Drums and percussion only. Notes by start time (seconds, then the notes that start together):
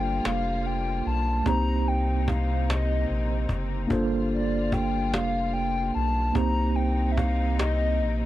0.25 cajon slap
0.64 cajon slap
1.06 cajon slap
1.46 cajon bass
1.86 cajon slap
2.28 cajon bass
2.70 cajon slap
3.09 cajon slap
3.49 cajon bass
3.90 cajon bass
4.31 cajon slap
4.72 cajon bass
5.14 cajon slap
5.53 cajon slap
5.95 cajon slap
6.35 cajon bass
6.76 cajon slap
7.17 cajon bass
7.59 cajon slap
7.99 cajon slap